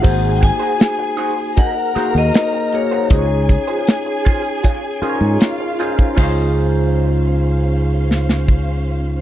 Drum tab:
CC |x---------------|----------------|x---------------|
HH |--x-x-o-x-x-x-x-|x-xxx-xxx-x-x-x-|----------------|
SD |----o-----o-o---|----o-------o---|----------oo----|
BD |o-o-----o-------|o-o---o-o------o|o-----------o---|